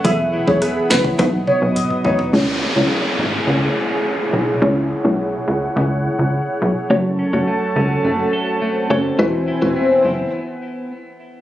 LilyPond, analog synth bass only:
\new Staff \with { instrumentName = "Analog synth bass" } { \clef bass \time 4/4 \key cis \minor \tempo 4 = 105 e,,8. e,,8. fis,,8 b,,8. b,,8 r16 a,,16 r16 | cis,8. cis,16 r8 gis,,8 cis,8 r4 b,,8 | cis,8. b,,8. cis,8 cis,8. cis,8 r16 b,,16 r16 | fis,,8. fis,,16 r8 cis,8 fis,,8 r4 fis,,8 |
e,,8. e,,8. fis,,8 r2 | }